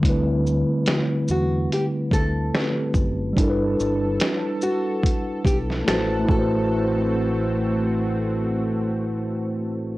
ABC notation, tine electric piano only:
X:1
M:4/4
L:1/8
Q:"Swing 16ths" 1/4=72
K:Ador
V:1 name="Tine electric piano"
[D,G,A,CEB]6 [D,A,CEGB]2 | [G,DEA_B=B]6 [A,EFBc] [A,EFBc]- | [A,EFBc]8 |]